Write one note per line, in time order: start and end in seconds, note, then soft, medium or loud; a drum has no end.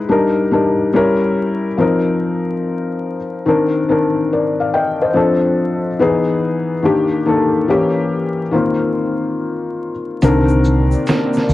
0.00 0.10 G#3 medium
0.09 0.41 G3 medium
0.09 0.41 D4 medium
0.09 0.42 D#4 medium
0.09 0.42 A#4 medium
0.51 0.92 G3 medium
0.51 0.94 D4 medium
0.51 0.94 D#4 medium
0.51 0.94 A#4 medium
0.94 1.66 G3 medium
0.94 1.66 C#4 medium
0.94 1.67 E4 medium
0.94 1.67 A#4 loud
1.78 3.15 F3 medium
1.78 3.16 C4 medium
1.78 3.16 D#4 medium
1.78 3.17 A#4 medium
3.46 3.78 D#3 medium
3.46 3.79 C4 medium
3.46 3.79 D4 medium
3.46 3.80 A#4 medium
3.89 5.05 D#3 medium
3.89 5.05 C4 medium
3.89 5.06 D4 medium
3.89 4.31 A#4 medium
4.33 4.58 A#4 soft
4.33 4.58 D5 medium
4.60 4.73 D5 soft
4.60 4.73 F5 medium
4.74 5.00 D#5 medium
4.74 5.00 G5 medium
5.02 5.42 C5 soft
5.02 5.41 D#5 medium
5.14 5.87 F3 medium
5.14 5.88 C4 medium
5.14 5.88 D4 medium
5.14 5.89 A4 medium
5.99 6.72 E3 medium
5.99 6.73 B3 medium
5.99 6.73 D#4 medium
5.99 6.74 G#4 loud
6.82 7.16 D#3 medium
6.82 7.16 A#3 medium
6.82 7.17 D4 medium
6.82 7.17 G4 medium
7.26 7.68 D#3 medium
7.26 7.67 A#3 medium
7.26 7.69 D4 medium
7.26 7.70 A4 medium
7.68 8.41 E3 medium
7.68 8.42 A#3 medium
7.68 8.42 C#4 medium
7.68 8.42 G4 loud
8.52 9.90 D#3 medium
8.52 9.91 A#3 medium
8.52 9.91 C4 medium
8.52 9.92 F4 medium
10.22 10.94 C2 loud
10.22 11.54 C3 medium
10.22 10.31 D3 medium
10.22 11.54 A#3 medium
10.22 11.54 C4 medium
10.22 11.39 C4 medium
10.22 11.54 D4 medium
10.22 11.40 D4 medium
10.22 11.40 A#4 medium
10.22 closed hi-hat medium
10.22 shaker medium
10.29 11.42 D#3 medium
10.49 shaker medium
10.65 shaker soft
10.91 shaker soft
11.07 finger snap medium
11.07 snare loud
11.07 closed hi-hat medium
11.07 shaker medium
11.33 snare soft
11.33 shaker soft
11.49 11.54 D2 medium
11.49 shaker soft